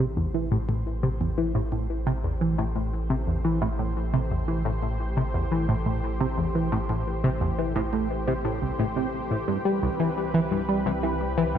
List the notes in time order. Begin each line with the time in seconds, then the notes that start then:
Already playing: A1 E3 A3 G4 C5
0.17 E2
0.34 E3
0.51 A2
0.69 A2
1.03 C3
1.20 E2
1.38 E3
1.55 A2
1.72 A2
2.07 C3
2.24 E2
2.41 E3
2.58 A2
2.76 A2
3.10 C3
3.27 E2
3.45 E3
3.62 A2
3.79 A2
4.13 C3
4.31 E2
4.48 E3
4.65 A2
4.83 A2
5.17 C3
5.34 E2
5.51 E3
5.69 A2
5.86 A2
6.20 C3
6.38 E2
6.55 E3
6.72 A2
6.89 A2
7.24 C3
7.41 E2
7.58 E3
7.76 A2
7.93 A2
8.27 C3
8.45 A2
8.62 C2
8.79 A2
8.96 C3
9.31 A2
9.48 C2 G2 E3 C4 B4
9.65 G3
9.82 C2
10.00 E3
10.34 E3
10.51 G2
10.69 G3
10.86 C2
11.03 E3
11.38 E3
11.55 G2